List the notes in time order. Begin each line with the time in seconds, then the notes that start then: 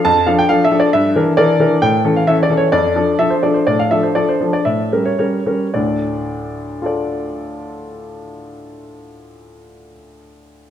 0.05 F2 A5
0.26 F3 D4 A4 F5
0.39 G5
0.49 F3 D4 A4 F5
0.65 E5
0.71 F3 D4 A4
0.80 D5
0.93 G2 E5
1.15 E3 D4 A#4
1.37 E3 D4 A#4 D5
1.60 E3 D4 A#4
1.82 A2 G5
2.04 E3 C#4 A4
2.16 F5
2.27 E3 C#4 A4 E5
2.43 D5
2.50 E3 C#4 A4
2.57 C#5
2.72 F2 D5
2.96 F3 D4 A4
3.19 F3 D4 A4 E5
3.30 C5
3.43 F3 D4 A4 D5
3.54 C5
3.67 A2 D5
3.79 F5
3.91 F3 D4 A4 E5
4.03 C5
4.15 F3 D4 A4 D5
4.29 C5
4.40 F3 D4 A4
4.53 D5
4.65 A2 E5
4.92 G3 C#4 A#4
5.05 C#5
5.19 G3 C#4 A#4 C#5
5.46 G3 C#4 A#4
5.74 D2 A2 D5
6.82 F4 A4
6.86 D5